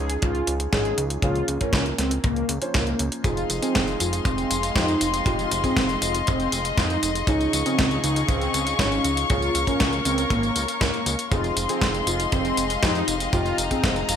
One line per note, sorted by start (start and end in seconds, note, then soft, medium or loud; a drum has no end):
0.00 0.17 C#2 medium
0.00 0.70 F3 medium
0.00 0.70 C#4 medium
0.00 0.70 D#4 medium
0.00 0.13 G#4 medium
0.00 0.70 G#4 loud
0.10 closed hi-hat soft
0.22 0.43 C#2 medium
0.22 0.54 F4 loud
0.22 kick loud
0.22 closed hi-hat medium
0.35 closed hi-hat soft
0.47 0.68 C#2 medium
0.47 closed hi-hat medium
0.60 closed hi-hat medium
0.73 0.93 G#1 loud
0.73 1.20 F3 medium
0.73 1.20 C#4 medium
0.73 1.20 D#4 medium
0.73 1.20 F4 medium
0.73 1.04 G#4 medium
0.73 kick loud
0.73 snare loud
0.73 closed hi-hat soft
0.85 closed hi-hat soft
0.98 1.18 C#2 medium
0.98 closed hi-hat medium
1.10 closed hi-hat medium
1.22 1.43 C#2 medium
1.22 1.58 F3 medium
1.22 1.58 A#3 medium
1.22 1.58 C#4 medium
1.22 1.47 F4 loud
1.22 1.58 G#4 medium
1.22 kick loud
1.22 closed hi-hat medium
1.36 closed hi-hat soft
1.48 1.58 C#2 medium
1.48 closed hi-hat medium
1.61 2.59 F3 medium
1.61 2.59 A#3 medium
1.61 1.84 C#4 medium
1.61 2.59 C#4 medium
1.61 2.59 A#4 medium
1.61 kick medium
1.61 closed hi-hat medium
1.73 1.93 C#2 medium
1.73 kick loud
1.73 snare loud
1.73 closed hi-hat medium
1.86 closed hi-hat soft
1.98 2.19 C#2 medium
1.98 2.14 C4 medium
1.98 snare medium
1.98 closed hi-hat loud
2.11 closed hi-hat medium
2.24 2.44 C#2 medium
2.24 2.55 A#3 loud
2.24 kick loud
2.24 closed hi-hat medium
2.36 closed hi-hat soft
2.49 2.59 C#2 loud
2.49 closed hi-hat medium
2.62 3.22 F3 medium
2.62 3.22 A#3 medium
2.62 3.22 C#4 medium
2.62 3.22 C5 medium
2.62 closed hi-hat medium
2.74 2.95 C#2 medium
2.74 3.06 A#3 loud
2.74 kick loud
2.74 snare loud
2.74 closed hi-hat medium
2.87 closed hi-hat soft
2.99 3.10 C#2 medium
2.99 closed hi-hat loud
3.12 closed hi-hat medium
3.24 3.45 F1 medium
3.24 3.59 F3 medium
3.24 7.24 G#3 medium
3.24 3.59 C4 medium
3.24 3.59 D#4 medium
3.24 3.48 F4 loud
3.24 3.59 G#4 medium
3.24 9.26 D#5 medium
3.24 7.24 F5 medium
3.24 7.24 C6 medium
3.24 kick loud
3.24 closed hi-hat medium
3.24 tambourine soft
3.37 closed hi-hat soft
3.37 tambourine soft
3.50 3.60 F1 medium
3.50 closed hi-hat medium
3.50 tambourine medium
3.62 4.73 F3 medium
3.62 3.86 C4 medium
3.62 4.73 C4 medium
3.62 4.73 D#4 medium
3.62 4.73 G#4 loud
3.62 closed hi-hat medium
3.62 tambourine soft
3.75 3.96 F1 medium
3.75 kick loud
3.75 snare loud
3.75 closed hi-hat medium
3.75 tambourine soft
3.88 closed hi-hat soft
3.88 tambourine soft
4.00 4.21 F1 medium
4.00 4.16 F4 medium
4.00 closed hi-hat medium
4.00 tambourine medium
4.13 closed hi-hat medium
4.13 tambourine soft
4.25 4.46 F1 medium
4.25 4.57 C4 medium
4.25 kick loud
4.25 closed hi-hat medium
4.25 tambourine soft
4.38 closed hi-hat soft
4.38 tambourine soft
4.51 4.71 F1 medium
4.51 closed hi-hat medium
4.51 tambourine medium
4.63 closed hi-hat medium
4.63 tambourine soft
4.76 4.96 F2 loud
4.76 5.23 F3 medium
4.76 5.23 C4 medium
4.76 5.07 D#4 loud
4.76 5.23 D#4 medium
4.76 5.23 G4 medium
4.76 kick loud
4.76 snare loud
4.76 closed hi-hat medium
4.76 tambourine soft
4.88 closed hi-hat soft
4.88 tambourine soft
5.01 5.21 F1 medium
5.01 closed hi-hat medium
5.01 tambourine medium
5.14 closed hi-hat medium
5.14 tambourine soft
5.26 5.46 F1 medium
5.26 5.61 F3 medium
5.26 5.61 C4 medium
5.26 5.61 D#4 medium
5.26 5.50 F4 loud
5.26 5.61 G4 medium
5.26 kick loud
5.26 closed hi-hat medium
5.26 tambourine soft
5.39 closed hi-hat soft
5.39 tambourine soft
5.51 5.62 F1 medium
5.51 closed hi-hat medium
5.51 tambourine medium
5.64 7.25 F3 medium
5.64 5.88 C4 medium
5.64 7.25 C4 medium
5.64 7.25 D#4 medium
5.64 7.25 G#4 medium
5.64 kick medium
5.64 closed hi-hat medium
5.64 tambourine soft
5.77 5.97 F1 medium
5.77 kick loud
5.77 snare loud
5.77 closed hi-hat medium
5.77 tambourine soft
5.89 closed hi-hat soft
5.89 tambourine soft
6.02 6.22 F1 medium
6.02 6.18 F4 medium
6.02 closed hi-hat medium
6.02 tambourine medium
6.15 closed hi-hat soft
6.15 tambourine soft
6.27 6.48 F1 medium
6.27 6.59 C4 loud
6.27 kick loud
6.27 closed hi-hat medium
6.27 tambourine soft
6.40 closed hi-hat soft
6.40 tambourine soft
6.52 6.73 F1 medium
6.52 closed hi-hat medium
6.52 tambourine medium
6.65 closed hi-hat soft
6.65 tambourine soft
6.78 6.98 F2 loud
6.78 7.09 D#4 medium
6.78 kick loud
6.78 snare loud
6.78 closed hi-hat soft
6.78 tambourine soft
6.90 closed hi-hat soft
6.90 tambourine soft
7.03 7.23 F1 medium
7.03 closed hi-hat medium
7.03 tambourine medium
7.15 closed hi-hat medium
7.15 tambourine soft
7.27 7.48 C#2 medium
7.27 7.63 F3 medium
7.27 7.63 C#4 medium
7.27 7.63 D#4 medium
7.27 7.52 D#4 loud
7.27 7.63 G#4 medium
7.27 9.28 G#4 medium
7.27 11.28 F5 medium
7.27 11.27 C#6 medium
7.27 kick loud
7.27 closed hi-hat soft
7.27 tambourine soft
7.41 closed hi-hat soft
7.41 tambourine soft
7.53 7.63 C#2 medium
7.53 closed hi-hat medium
7.53 tambourine medium
7.66 8.76 C#3 medium
7.66 8.76 F3 loud
7.66 7.89 C4 loud
7.66 8.76 D#4 medium
7.66 8.76 G#4 loud
7.66 closed hi-hat soft
7.66 tambourine soft
7.79 7.99 C#2 medium
7.79 kick loud
7.79 snare loud
7.79 closed hi-hat soft
7.79 tambourine soft
7.91 closed hi-hat soft
7.91 tambourine soft
8.04 8.24 C#2 medium
8.04 8.19 D#4 medium
8.04 closed hi-hat medium
8.04 tambourine medium
8.16 closed hi-hat soft
8.16 tambourine soft
8.29 8.49 C#2 medium
8.29 8.60 C4 loud
8.29 kick loud
8.29 closed hi-hat soft
8.29 tambourine soft
8.41 closed hi-hat soft
8.41 tambourine soft
8.54 8.74 C#2 medium
8.54 closed hi-hat medium
8.54 tambourine medium
8.67 closed hi-hat soft
8.67 tambourine soft
8.79 8.99 G#1 loud
8.79 9.27 F3 medium
8.79 9.11 C#4 medium
8.79 9.27 C#4 medium
8.79 9.27 D#4 medium
8.79 9.27 F4 medium
8.79 kick loud
8.79 snare loud
8.79 closed hi-hat soft
8.79 tambourine soft
8.92 closed hi-hat soft
8.92 tambourine soft
9.05 9.25 C#2 medium
9.05 closed hi-hat medium
9.05 tambourine medium
9.17 closed hi-hat soft
9.17 tambourine soft
9.30 9.50 C#2 loud
9.30 9.65 F3 medium
9.30 9.65 A#3 medium
9.30 9.65 C#4 medium
9.30 9.53 F4 loud
9.30 9.65 G#4 medium
9.30 11.29 A#4 medium
9.30 11.29 C#5 medium
9.30 kick loud
9.30 closed hi-hat soft
9.30 tambourine soft
9.42 closed hi-hat soft
9.42 tambourine soft
9.55 9.65 C#2 medium
9.55 closed hi-hat medium
9.55 tambourine medium
9.67 11.28 F3 medium
9.67 11.28 A#3 medium
9.67 9.91 C#4 loud
9.67 11.28 C#4 medium
9.67 11.28 A#4 medium
9.67 kick medium
9.67 closed hi-hat soft
9.67 tambourine soft
9.80 10.01 C#2 medium
9.80 kick loud
9.80 snare loud
9.80 closed hi-hat medium
9.80 tambourine soft
9.93 closed hi-hat soft
9.93 tambourine soft
10.05 10.26 C#2 medium
10.05 10.21 C4 medium
10.05 closed hi-hat medium
10.05 tambourine medium
10.18 closed hi-hat soft
10.18 tambourine soft
10.30 10.51 G#1 loud
10.30 10.62 A#3 loud
10.30 kick loud
10.30 closed hi-hat soft
10.30 tambourine soft
10.43 closed hi-hat soft
10.43 tambourine soft
10.56 10.66 C#2 medium
10.56 closed hi-hat medium
10.56 tambourine medium
10.68 closed hi-hat soft
10.68 tambourine soft
10.81 10.91 C#2 medium
10.81 11.12 A#3 loud
10.81 kick loud
10.81 snare loud
10.81 closed hi-hat soft
10.81 tambourine soft
10.94 closed hi-hat soft
10.94 tambourine soft
11.06 11.16 C#2 loud
11.06 closed hi-hat medium
11.06 tambourine medium
11.19 closed hi-hat soft
11.19 tambourine soft
11.31 11.52 F1 medium
11.31 11.66 F3 medium
11.31 14.16 G#3 medium
11.31 11.66 C4 medium
11.31 11.66 D#4 medium
11.31 11.55 F4 loud
11.31 11.66 G#4 medium
11.31 14.16 D#5 medium
11.31 14.16 F5 medium
11.31 13.31 C6 medium
11.31 kick loud
11.31 closed hi-hat medium
11.31 tambourine soft
11.44 closed hi-hat soft
11.44 tambourine soft
11.57 11.67 F1 medium
11.57 closed hi-hat medium
11.57 tambourine medium
11.69 12.80 F3 medium
11.69 12.80 C4 medium
11.69 11.93 C4 medium
11.69 12.80 D#4 medium
11.69 12.80 G#4 loud
11.69 closed hi-hat medium
11.69 tambourine soft
11.81 12.02 F1 medium
11.81 kick loud
11.81 snare loud
11.81 closed hi-hat medium
11.81 tambourine soft
11.94 closed hi-hat soft
11.94 tambourine soft
12.07 12.27 F1 medium
12.07 12.23 F4 medium
12.07 closed hi-hat medium
12.07 tambourine medium
12.20 closed hi-hat soft
12.20 tambourine soft
12.32 12.53 F1 medium
12.32 12.64 C4 loud
12.32 kick loud
12.32 closed hi-hat soft
12.32 tambourine soft
12.45 closed hi-hat soft
12.45 tambourine soft
12.57 12.78 F1 medium
12.57 closed hi-hat medium
12.57 tambourine medium
12.70 closed hi-hat soft
12.70 tambourine soft
12.83 13.03 F2 loud
12.83 13.30 F3 medium
12.83 13.30 C4 medium
12.83 13.30 D#4 medium
12.83 13.14 D#4 loud
12.83 13.30 G4 medium
12.83 kick loud
12.83 snare loud
12.83 closed hi-hat soft
12.83 tambourine soft
12.95 closed hi-hat soft
12.95 tambourine soft
13.08 13.28 F1 medium
13.08 closed hi-hat medium
13.08 tambourine medium
13.20 closed hi-hat soft
13.20 tambourine soft
13.33 13.53 F1 loud
13.33 13.68 F3 medium
13.33 13.68 C4 medium
13.33 13.68 D#4 medium
13.33 13.57 F4 loud
13.33 13.68 G4 medium
13.33 14.16 A#5 medium
13.33 kick loud
13.33 closed hi-hat medium
13.33 tambourine soft
13.46 closed hi-hat soft
13.46 tambourine soft
13.58 13.68 F1 medium
13.58 closed hi-hat medium
13.58 tambourine medium
13.71 14.16 F3 medium
13.71 14.16 C4 medium
13.71 13.95 C4 medium
13.71 14.16 D#4 medium
13.71 14.16 G#4 medium
13.71 kick medium
13.71 closed hi-hat medium
13.71 tambourine soft
13.84 14.04 F1 medium
13.84 kick loud
13.84 snare loud
13.84 closed hi-hat soft
13.84 tambourine soft
13.96 closed hi-hat soft
13.96 tambourine soft
14.09 14.16 F1 medium
14.09 14.16 F4 medium
14.09 closed hi-hat medium
14.09 tambourine medium